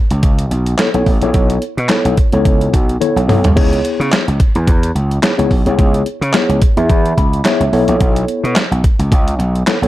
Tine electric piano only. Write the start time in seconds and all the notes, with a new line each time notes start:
0.78 B3 E4 A4 C#5
0.94 B3 E4 A4 C#5
1.22 B3 E4 A4 C#5
1.89 B3 E4 A4 C#5
2.33 B3 E4 A4 C#5
3.00 B3 E4 A4 C#5
3.28 B3 E4 A4 C#5
3.56 B3 E4 G#4 C#5
5.22 B3 E4 G#4 C#5
5.38 B3 E4 G#4 C#5
5.66 B3 E4 G#4 C#5
6.34 B3 E4 G#4 C#5
6.77 B3 E4 G#4 E5
7.18 B5
7.45 B3 E4 G#4 C#5 E5
7.73 B3 E4 A4 C#5
9.67 B3 E4 A4 C#5
9.83 B3 E4 A4 C#5